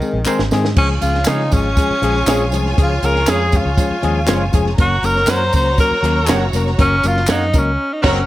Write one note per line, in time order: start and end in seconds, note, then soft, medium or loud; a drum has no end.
0.00 0.24 D#3 loud
0.00 0.17 D#3 medium
0.00 0.18 G#3 medium
0.00 0.18 C4 medium
0.00 0.18 G#4 medium
0.00 tambourine soft
0.13 0.25 A#1 medium
0.25 0.42 D#3 loud
0.25 0.43 G#3 loud
0.25 0.43 C4 loud
0.25 0.40 D#4 medium
0.25 0.41 G#4 medium
0.25 0.43 A#4 loud
0.25 0.41 C5 medium
0.25 muted fingered electric bass stroke soft
0.25 clap medium
0.25 tambourine medium
0.39 0.50 G#1 medium
0.39 snare medium
0.51 0.74 G#2 medium
0.51 0.68 D#3 loud
0.51 0.68 G#3 medium
0.51 0.68 C4 medium
0.51 0.69 G#4 loud
0.51 snare medium
0.51 tambourine medium
0.65 snare medium
0.76 0.99 C#2 loud
0.76 0.93 F3 medium
0.76 0.93 G#3 medium
0.76 0.93 C#4 medium
0.76 0.89 C#4 loud
0.76 4.75 F4 medium
0.76 0.94 G#4 loud
0.76 4.75 C#5 medium
0.76 4.75 G#5 medium
0.76 kick loud
0.76 crash loud
0.76 tambourine soft
1.01 1.24 C#2 medium
1.01 1.18 F3 medium
1.01 1.18 G#3 medium
1.01 1.18 C#4 medium
1.01 1.29 F4 loud
1.01 1.18 G#4 medium
1.01 closed hi-hat medium
1.01 tambourine medium
1.14 snare soft
1.25 1.49 C#3 medium
1.25 1.43 F3 medium
1.25 1.43 G#3 medium
1.25 1.43 C#4 medium
1.25 1.54 D#4 medium
1.25 1.44 F4 medium
1.25 1.40 G#4 medium
1.25 1.41 C#5 medium
1.25 1.41 F5 medium
1.25 snare loud
1.25 clap medium
1.25 closed hi-hat medium
1.25 tambourine medium
1.40 snare soft
1.51 1.74 G#1 medium
1.51 1.68 F3 medium
1.51 1.68 G#3 medium
1.51 1.68 C#4 medium
1.51 2.53 C#4 medium
1.51 1.69 G#4 medium
1.51 kick medium
1.51 closed hi-hat medium
1.51 tambourine medium
1.77 1.93 F3 medium
1.77 1.93 G#3 medium
1.77 1.94 C#4 medium
1.77 1.94 G#4 medium
1.77 kick medium
1.77 closed hi-hat medium
1.77 tambourine medium
1.90 muted fingered electric bass stroke soft
2.02 2.24 A#1 medium
2.02 2.18 F3 medium
2.02 2.19 G#3 medium
2.02 2.19 C#4 medium
2.02 2.19 G#4 loud
2.02 closed hi-hat medium
2.27 2.52 A#1 loud
2.27 2.44 F3 loud
2.27 2.44 G#3 loud
2.27 2.44 C#4 loud
2.27 2.41 G#4 medium
2.27 2.45 G#4 loud
2.27 2.41 C#5 medium
2.27 2.42 F5 medium
2.27 snare loud
2.27 clap medium
2.27 closed hi-hat medium
2.27 tambourine loud
2.52 2.74 C2 medium
2.52 2.69 F3 medium
2.52 2.69 G#3 medium
2.52 2.69 C#4 medium
2.52 2.70 G#4 medium
2.52 closed hi-hat medium
2.52 tambourine medium
2.66 snare soft
2.77 3.00 C#2 loud
2.77 2.93 F3 medium
2.77 2.94 G#3 medium
2.77 2.94 C#4 medium
2.77 2.94 G#4 loud
2.77 kick loud
2.77 closed hi-hat loud
2.77 tambourine soft
2.82 3.07 F4 loud
3.02 3.24 C#2 medium
3.02 3.19 F3 medium
3.02 3.19 G#3 medium
3.02 3.20 C#4 medium
3.02 3.20 G#4 medium
3.02 3.31 A#4 loud
3.02 closed hi-hat medium
3.02 tambourine medium
3.16 snare soft
3.27 3.61 F2 medium
3.27 3.44 F3 medium
3.27 3.44 G#3 medium
3.27 3.44 C#4 medium
3.27 3.41 G#4 medium
3.27 3.57 G#4 loud
3.27 3.45 G#4 medium
3.27 3.42 C#5 medium
3.27 3.42 F5 medium
3.27 snare loud
3.27 clap medium
3.27 closed hi-hat medium
3.27 tambourine medium
3.52 3.69 F3 medium
3.52 3.69 G#3 medium
3.52 3.70 C#4 medium
3.52 4.55 F4 medium
3.52 3.70 G#4 medium
3.52 kick medium
3.52 closed hi-hat medium
3.52 tambourine medium
3.65 3.76 C#2 medium
3.78 3.94 F3 medium
3.78 3.94 G#3 medium
3.78 3.95 C#4 medium
3.78 3.95 G#4 medium
3.78 kick loud
3.78 closed hi-hat medium
3.78 tambourine medium
3.90 muted fingered electric bass stroke soft
4.02 4.25 D#2 medium
4.02 4.19 F3 medium
4.02 4.19 G#3 medium
4.02 4.19 C#4 medium
4.02 4.20 G#4 loud
4.02 closed hi-hat medium
4.27 4.50 F#1 medium
4.27 4.43 F3 loud
4.27 4.44 G#3 loud
4.27 4.44 C#4 loud
4.27 4.44 F4 loud
4.27 4.42 G#4 medium
4.27 4.42 C#5 medium
4.27 4.42 F5 medium
4.27 snare loud
4.27 clap medium
4.27 closed hi-hat medium
4.27 tambourine medium
4.53 4.75 F1 medium
4.53 4.69 F3 medium
4.53 4.69 G#3 medium
4.53 4.70 C#4 medium
4.53 4.70 G#4 loud
4.53 kick medium
4.53 closed hi-hat medium
4.53 tambourine medium
4.66 snare soft
4.77 5.00 F#1 loud
4.77 4.94 F#3 medium
4.77 4.94 A#3 medium
4.77 4.95 C#4 medium
4.77 7.74 F#4 medium
4.77 5.07 F#4 loud
4.77 4.95 A#4 loud
4.77 7.74 C#5 medium
4.77 7.74 A#5 loud
4.77 kick loud
4.77 closed hi-hat loud
5.02 5.25 F#1 medium
5.02 5.19 F#3 medium
5.02 5.20 A#3 medium
5.02 5.20 C#4 medium
5.02 5.20 A#4 medium
5.02 5.32 A#4 loud
5.02 closed hi-hat medium
5.02 tambourine medium
5.16 snare soft
5.27 5.49 F#2 loud
5.27 5.44 F#3 medium
5.27 5.45 A#3 medium
5.27 5.45 C#4 medium
5.27 5.42 A#4 medium
5.27 5.45 A#4 medium
5.27 5.55 C5 loud
5.27 5.42 C#5 medium
5.27 5.42 F#5 medium
5.27 snare loud
5.27 clap medium
5.27 closed hi-hat medium
5.27 tambourine medium
5.53 5.75 C#2 medium
5.53 5.70 F#3 medium
5.53 5.70 A#3 medium
5.53 5.70 C#4 medium
5.53 5.78 C5 loud
5.53 5.70 C5 medium
5.53 kick medium
5.53 closed hi-hat medium
5.53 tambourine medium
5.78 5.94 F#3 medium
5.78 5.95 A#3 medium
5.78 5.95 C#4 medium
5.78 6.51 A#4 medium
5.78 5.95 A#4 medium
5.78 kick medium
5.78 closed hi-hat medium
5.78 tambourine medium
5.91 muted fingered electric bass stroke soft
6.03 6.30 D#2 loud
6.03 6.19 F#3 loud
6.03 6.20 A#3 medium
6.03 6.20 C#4 medium
6.03 6.20 A#4 loud
6.03 closed hi-hat medium
6.27 6.50 F#1 loud
6.27 6.44 F#3 loud
6.27 6.45 A#3 medium
6.27 6.45 C#4 medium
6.27 6.42 A#4 medium
6.27 6.45 A#4 loud
6.27 6.43 C#5 loud
6.27 6.43 F#5 loud
6.27 snare loud
6.27 clap medium
6.27 closed hi-hat loud
6.27 tambourine medium
6.53 6.75 F1 loud
6.53 6.70 F#3 medium
6.53 6.70 A#3 medium
6.53 6.71 C#4 medium
6.53 6.71 A#4 loud
6.53 closed hi-hat medium
6.53 tambourine medium
6.67 snare soft
6.79 7.01 F#1 loud
6.79 6.95 F#3 loud
6.79 6.95 A#3 medium
6.79 6.95 C#4 loud
6.79 7.09 C#4 loud
6.79 6.95 A#4 loud
6.79 kick loud
6.79 closed hi-hat loud
6.79 tambourine soft
7.03 7.26 F#1 medium
7.03 7.20 F#3 medium
7.03 7.20 A#3 medium
7.03 7.20 C#4 medium
7.03 7.33 F4 loud
7.03 7.20 A#4 medium
7.03 closed hi-hat medium
7.03 tambourine medium
7.17 snare soft
7.27 7.55 F#2 loud
7.27 7.45 F#3 medium
7.27 7.45 A#3 medium
7.27 7.45 C#4 medium
7.27 7.42 A#4 medium
7.27 7.46 A#4 medium
7.27 7.43 C#5 loud
7.27 7.43 F#5 medium
7.27 snare loud
7.27 clap medium
7.27 closed hi-hat loud
7.27 tambourine loud
7.32 7.60 D#4 loud
7.42 snare soft
7.53 7.76 C#2 medium
7.53 7.70 F#3 medium
7.53 7.70 A#3 medium
7.53 7.70 C#4 medium
7.53 7.71 A#4 medium
7.53 kick medium
7.53 closed hi-hat medium
7.53 tambourine medium
7.58 7.95 C#4 medium
7.93 8.04 D#4 medium
8.02 8.21 F#1 loud
8.02 8.21 F#3 loud
8.02 8.17 F#3 medium
8.02 8.21 A#3 loud
8.02 8.13 C#4 medium
8.02 8.17 C#4 medium
8.02 8.21 C#4 loud
8.02 8.21 F#4 loud
8.02 8.21 A#4 loud
8.02 8.17 A#4 loud
8.02 8.22 A#4 loud
8.02 8.21 C#5 loud
8.02 8.22 F#5 loud
8.02 8.21 A#5 loud
8.02 kick loud
8.02 snare loud
8.02 crash medium
8.11 8.22 C4 medium
8.21 8.27 C#4 medium